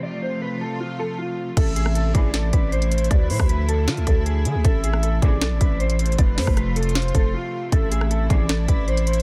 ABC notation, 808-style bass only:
X:1
M:4/4
L:1/16
Q:1/4=156
K:Am
V:1 name="808-style bass" clef=bass
z16 | A,,,6 A,,,4 A,,,6 | D,,2 A,, D,,4- D,, D, D,, D,,4 D, D,, | A,,,6 A,,,2 B,,, A,,, A,,,6 |
F,,,2 F,, F,,,6- F,,, F,,,2 z4 | A,,,6 A,,,4 A,,,6 |]